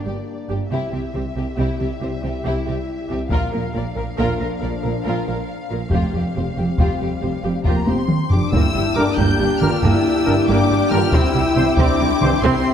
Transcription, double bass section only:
0.06 0.14 G1 soft
0.50 0.58 G1 soft
0.71 0.79 C2 medium
0.93 1.01 C2 soft
1.14 1.22 C2 soft
1.36 1.44 C2 soft
1.58 1.66 C2 medium
1.80 1.88 C2 soft
2.02 2.10 C2 soft
2.23 2.31 C2 soft
2.45 2.53 C2 medium
2.67 2.75 C2 soft
3.10 3.18 C2 soft
3.31 3.39 A#1 medium
3.53 3.61 A#1 soft
3.75 3.83 A#1 soft
3.97 4.05 A#1 soft
4.19 4.27 A#1 medium
4.41 4.49 A#1 soft
4.63 4.71 A#1 soft
4.84 4.92 A#1 soft
5.06 5.14 A#1 medium
5.28 5.36 A#1 soft
5.71 5.79 A#1 soft
5.93 6.01 F1 medium
6.14 6.22 F1 soft
6.37 6.45 F1 soft
6.58 6.66 F1 soft
6.79 6.87 F1 medium
7.01 7.09 F1 soft
7.22 7.30 F1 soft
7.44 7.52 F1 soft
7.66 7.74 F1 medium
7.88 7.96 F1 soft
8.32 8.40 F1 soft
8.54 8.62 G1 medium
8.75 8.83 G1 medium
8.97 9.05 G1 medium
9.18 9.26 G1 medium
9.40 9.48 G1 medium
9.62 9.70 G1 medium
9.83 9.91 G1 medium
10.27 10.35 G1 medium
10.49 10.57 G1 medium
10.70 10.78 G1 medium
10.92 11.00 G1 medium
11.13 11.21 C2 medium
11.34 11.42 C2 medium
11.57 11.65 C2 medium
11.78 11.86 C2 medium
12.00 12.08 C2 medium
12.21 12.29 C2 medium
12.42 12.50 C2 medium

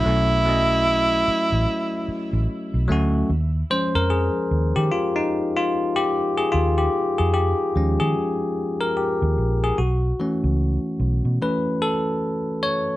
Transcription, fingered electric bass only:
0.06 1.23 B1 medium
1.28 muted fingered electric bass stroke soft
1.52 1.65 A1 medium
2.08 muted fingered electric bass stroke soft
2.33 2.46 A1 medium
2.74 2.86 B1 medium
2.89 3.22 D2 medium
3.29 3.62 D#2 medium
3.95 4.28 F2 medium
4.51 4.71 D#2 medium
4.77 4.89 D#3 medium
6.54 6.87 D#2 medium
7.19 7.52 F2 medium
7.76 7.96 D#2 medium
8.01 8.13 D#3 medium
9.22 9.35 D#2 medium
9.38 9.70 A#1 medium
9.78 10.11 B1 medium
10.44 10.76 C#2 medium
11.00 11.20 B1 medium
11.25 11.37 B2 medium

